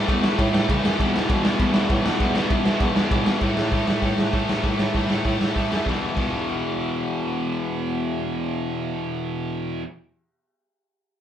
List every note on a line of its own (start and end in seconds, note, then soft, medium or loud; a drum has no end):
0.08 0.28 E2 loud
0.08 0.22 A2 medium
0.08 0.23 E3 medium
0.08 0.22 A3 medium
0.08 kick loud
0.08 ride medium
0.23 0.37 A2 medium
0.23 0.39 E3 loud
0.23 0.38 A3 loud
0.23 snare loud
0.38 0.48 A2 loud
0.38 0.52 A2 medium
0.38 0.53 E3 medium
0.38 0.51 A3 medium
0.38 kick loud
0.38 ride medium
0.52 0.67 A2 medium
0.52 0.63 A2 medium
0.52 0.68 E3 loud
0.52 0.68 A3 loud
0.52 snare loud
0.68 0.83 A2 medium
0.68 0.79 C#3 medium
0.68 0.83 E3 medium
0.68 0.82 A3 medium
0.68 kick loud
0.68 ride medium
0.83 0.93 F#2 medium
0.83 0.98 A2 medium
0.83 0.99 E3 medium
0.83 0.98 A3 medium
0.83 snare loud
0.99 1.14 E2 loud
0.99 1.18 E2 medium
0.99 1.13 B2 loud
0.99 1.13 E3 loud
0.99 kick loud
0.99 ride medium
1.14 1.28 E2 medium
1.14 1.27 B2 medium
1.14 1.29 E3 loud
1.14 snare loud
1.28 1.43 E2 medium
1.28 1.43 B2 medium
1.28 1.49 B2 loud
1.28 1.43 E3 loud
1.28 kick loud
1.28 ride medium
1.43 1.57 E2 loud
1.43 1.57 B2 medium
1.43 1.59 E3 loud
1.43 snare loud
1.58 1.72 E2 medium
1.58 1.69 E2 loud
1.58 1.72 B2 loud
1.58 1.72 E3 medium
1.58 kick loud
1.58 ride medium
1.73 1.88 E2 medium
1.73 1.84 E2 medium
1.73 1.89 B2 loud
1.73 1.90 E3 loud
1.73 snare loud
1.90 2.05 E2 medium
1.90 1.99 A2 medium
1.90 2.04 B2 medium
1.90 2.05 E3 loud
1.90 kick loud
1.90 ride medium
2.05 2.15 E2 medium
2.05 2.19 E2 loud
2.05 2.19 B2 medium
2.05 2.20 E3 loud
2.05 snare loud
2.20 2.39 E2 loud
2.20 2.34 E2 medium
2.20 2.34 B2 medium
2.20 2.33 E3 loud
2.20 kick loud
2.20 ride medium
2.35 2.48 E2 medium
2.35 2.48 B2 medium
2.35 2.49 E3 loud
2.35 snare loud
2.49 2.64 E2 medium
2.49 2.63 B2 loud
2.49 2.70 B2 medium
2.49 2.63 E3 loud
2.49 kick loud
2.49 ride medium
2.64 2.79 E2 medium
2.64 2.79 B2 loud
2.64 2.80 E3 loud
2.64 snare loud
2.80 2.95 E2 loud
2.80 2.90 E2 loud
2.80 2.94 B2 medium
2.80 2.94 E3 loud
2.80 kick loud
2.80 ride medium
2.95 3.10 E2 medium
2.95 3.10 B2 loud
2.95 3.11 E3 loud
2.95 snare loud
3.11 3.27 E2 medium
3.11 3.21 A2 medium
3.11 3.26 B2 medium
3.11 3.26 E3 medium
3.11 kick loud
3.11 ride loud
3.26 3.36 E2 medium
3.26 3.41 E2 medium
3.26 3.41 B2 loud
3.26 3.40 E3 loud
3.26 snare loud
3.41 3.72 A2 medium
3.41 3.51 A2 medium
3.41 3.72 E3 medium
3.41 3.72 A3 medium
3.41 kick loud
3.41 crash medium
3.57 3.67 A2 medium
3.57 snare loud
3.71 3.82 A2 medium
3.71 3.86 A2 medium
3.71 3.87 E3 medium
3.71 3.85 A3 medium
3.71 kick loud
3.71 open hi-hat medium
3.87 4.00 A2 medium
3.87 3.98 A2 medium
3.87 4.02 E3 medium
3.87 4.01 A3 medium
3.87 snare loud
4.02 4.32 A2 medium
4.02 4.12 A2 medium
4.02 4.33 E3 loud
4.02 4.33 A3 medium
4.02 kick loud
4.02 open hi-hat medium
4.18 4.28 A2 medium
4.18 snare loud
4.33 4.48 A2 medium
4.33 4.43 A2 medium
4.33 4.49 E3 medium
4.33 4.47 A3 medium
4.33 kick loud
4.33 open hi-hat medium
4.48 4.58 A2 medium
4.48 4.61 A2 medium
4.48 4.62 E3 loud
4.48 4.63 A3 medium
4.48 snare loud
4.63 4.93 A2 medium
4.63 4.73 A2 medium
4.63 4.94 E3 medium
4.63 4.95 A3 medium
4.63 kick loud
4.63 open hi-hat soft
4.79 4.89 A2 medium
4.79 snare loud
4.94 5.04 A2 medium
4.94 5.10 A2 medium
4.94 5.09 E3 medium
4.94 5.09 A3 medium
4.94 kick loud
4.94 open hi-hat medium
5.09 5.19 A2 medium
5.09 5.23 A2 medium
5.09 5.24 E3 medium
5.09 5.25 A3 medium
5.09 snare loud
5.25 5.55 A2 medium
5.25 5.35 A2 medium
5.25 5.56 E3 medium
5.25 5.56 A3 loud
5.25 kick loud
5.25 open hi-hat medium
5.41 5.50 A2 medium
5.41 snare loud
5.56 5.65 A2 medium
5.56 5.71 A2 medium
5.56 5.70 E3 medium
5.56 5.70 A3 medium
5.56 kick loud
5.56 open hi-hat medium
5.71 5.81 F#2 medium
5.71 5.86 A2 medium
5.71 5.85 E3 medium
5.71 5.85 A3 medium
5.71 snare loud
5.85 6.15 E2 medium
5.85 5.95 E2 medium
5.85 6.17 B2 medium
5.85 kick medium
5.85 snare medium
5.89 6.19 E3 medium
6.15 9.82 E2 medium
6.15 9.08 E2 medium
6.15 9.82 B2 medium
6.15 9.83 E3 medium
6.15 kick loud
6.15 crash medium